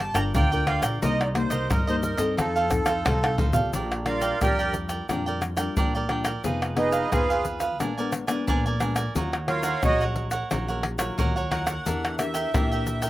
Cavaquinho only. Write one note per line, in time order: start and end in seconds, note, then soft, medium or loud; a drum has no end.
0.14 0.33 A#4 medium
0.14 0.32 D5 medium
0.14 0.32 G5 medium
0.34 0.50 F4 medium
0.34 0.50 A#4 medium
0.34 0.51 D5 medium
0.34 0.51 G5 medium
0.52 0.66 A#4 medium
0.52 0.67 D5 medium
0.52 0.67 G5 medium
0.67 0.83 F4 soft
0.67 0.83 A#4 medium
0.67 0.82 D5 medium
0.67 0.81 G5 medium
0.82 1.00 A#4 medium
0.82 1.00 D5 medium
0.82 0.99 G5 medium
1.02 1.34 D#4 medium
1.02 1.34 A#4 medium
1.02 1.35 C5 medium
1.02 1.35 D#5 medium
1.35 muted cavaquinho stroke soft
1.50 1.68 A#4 soft
1.50 1.68 C5 medium
1.50 1.67 D#5 medium
1.70 1.86 D#4 soft
1.70 1.86 A#4 medium
1.70 1.86 C5 medium
1.70 1.86 D#5 medium
1.87 2.19 A#4 medium
1.87 2.18 C5 medium
1.87 2.16 D#5 medium
2.17 2.36 A#4 medium
2.17 2.35 C5 medium
2.17 2.35 D#5 medium
2.37 2.53 D#4 soft
2.37 2.54 A4 soft
2.37 2.54 C5 soft
2.37 2.54 F5 soft
2.56 2.70 A4 medium
2.56 2.70 C5 medium
2.56 2.70 F5 medium
2.71 muted cavaquinho stroke soft
2.86 3.04 A4 medium
2.86 3.03 C5 medium
2.86 3.03 F5 medium
3.05 3.21 D#4 medium
3.05 3.21 A4 medium
3.05 3.22 C5 medium
3.05 3.22 F5 medium
3.23 3.37 A4 medium
3.23 3.38 C5 medium
3.23 3.38 F5 medium
3.38 3.54 D#4 soft
3.38 3.54 A4 medium
3.38 3.54 C5 soft
3.38 3.52 F5 medium
3.54 3.72 A4 soft
3.54 3.71 C5 medium
3.54 3.71 F5 medium
3.74 4.05 D4 soft
3.74 4.05 A#4 soft
3.74 4.05 D5 soft
3.74 4.06 G5 medium
4.06 muted cavaquinho stroke soft
4.22 4.39 A#4 medium
4.22 4.39 D5 medium
4.22 4.38 G5 medium
4.41 4.57 D4 soft
4.41 4.57 A#4 medium
4.41 4.57 D5 medium
4.41 4.58 G5 medium
4.59 4.90 A#4 medium
4.59 4.89 D5 medium
4.59 4.88 G5 medium
4.89 5.07 A#4 soft
4.89 5.07 D5 medium
4.89 5.06 G5 medium
5.09 5.25 D4 soft
5.09 5.25 A#4 soft
5.09 5.25 D5 soft
5.09 5.25 G5 soft
5.26 5.40 A#4 soft
5.26 5.41 D5 medium
5.26 5.41 G5 medium
5.41 muted cavaquinho stroke soft
5.57 5.75 A#4 medium
5.57 5.74 D5 medium
5.57 5.74 G5 medium
5.77 5.92 D4 medium
5.77 5.93 A#4 medium
5.77 5.93 D5 medium
5.77 5.93 G5 medium
5.95 6.09 A#4 medium
5.95 6.09 D5 medium
5.95 6.10 G5 medium
6.09 6.25 D4 soft
6.09 6.25 A#4 soft
6.09 6.24 D5 soft
6.09 6.23 G5 medium
6.24 6.42 A#4 medium
6.24 6.42 D5 medium
6.24 6.42 G5 medium
6.44 6.75 D#4 soft
6.44 6.76 G#4 soft
6.44 6.76 B4 medium
6.44 6.76 F5 medium
6.76 muted cavaquinho stroke soft
6.92 7.10 G#4 medium
6.92 7.10 B4 medium
6.92 7.09 F5 medium
7.12 7.28 D#4 soft
7.12 7.28 G#4 medium
7.12 7.28 B4 medium
7.12 7.29 F5 medium
7.30 7.61 G#4 medium
7.30 7.60 B4 medium
7.30 7.59 F5 medium
7.60 7.78 G#4 medium
7.60 7.78 B4 medium
7.60 7.77 F5 medium
7.80 7.96 D4 soft
7.80 7.96 A#4 soft
7.80 7.96 D5 medium
7.80 7.97 G#5 soft
7.98 8.11 A#4 medium
7.98 8.12 D5 medium
7.98 8.12 G#5 medium
8.12 muted cavaquinho stroke soft
8.27 8.46 A#4 medium
8.27 8.45 D5 medium
8.27 8.45 G#5 medium
8.47 8.63 D4 medium
8.47 8.64 A#4 medium
8.47 8.64 D5 medium
8.47 8.64 G#5 medium
8.66 8.79 A#4 medium
8.66 8.80 D5 medium
8.66 8.80 G#5 medium
8.80 8.96 D4 soft
8.80 8.96 A#4 medium
8.80 8.96 D5 soft
8.80 8.95 G#5 medium
8.96 9.14 A#4 soft
8.96 9.13 D5 medium
8.96 9.13 G#5 medium
9.16 9.47 D#4 soft
9.16 9.48 A#4 soft
9.16 9.48 C#5 medium
9.16 9.48 F#5 medium
9.48 muted cavaquinho stroke soft
9.64 9.82 A#4 medium
9.64 9.81 C#5 medium
9.64 9.81 F#5 medium
9.84 9.99 D#4 soft
9.84 10.00 A#4 soft
9.84 10.00 C#5 medium
9.84 10.00 F#5 medium
10.01 10.32 A#4 medium
10.01 10.31 C#5 medium
10.01 10.30 F#5 medium
10.31 10.49 A#4 soft
10.31 10.49 C#5 medium
10.31 10.48 F#5 medium
10.51 10.67 D#4 soft
10.51 10.67 A#4 soft
10.51 10.67 C#5 medium
10.51 10.67 F#5 soft
10.68 10.82 A#4 medium
10.68 10.83 C#5 medium
10.68 10.83 F#5 medium
10.83 muted cavaquinho stroke soft
10.98 11.17 A#4 soft
10.98 11.16 C#5 medium
10.98 11.16 F#5 medium
11.18 11.34 D#4 medium
11.18 11.34 A#4 medium
11.18 11.35 C#5 medium
11.18 11.35 F#5 medium
11.36 11.50 A#4 soft
11.36 11.51 C#5 medium
11.36 11.51 F#5 medium
11.51 11.67 D#4 soft
11.51 11.67 A#4 medium
11.51 11.66 C#5 medium
11.51 11.65 F#5 soft
11.66 11.85 A#4 medium
11.66 11.84 C#5 soft
11.66 11.84 F#5 medium
11.86 12.18 D4 soft
11.86 12.18 A#4 soft
11.86 12.18 E5 medium
12.19 muted cavaquinho stroke soft
12.34 12.52 A#4 medium
12.34 12.52 E5 medium
12.34 12.51 G5 medium
12.54 12.70 D4 soft
12.54 12.70 A#4 soft
12.54 12.71 E5 soft
12.54 12.70 G5 medium
12.72 13.02 A#4 medium
12.72 13.02 E5 medium
12.72 13.01 G5 medium
13.02 13.10 A#4 medium
13.02 13.10 E5 medium
13.02 13.10 G5 medium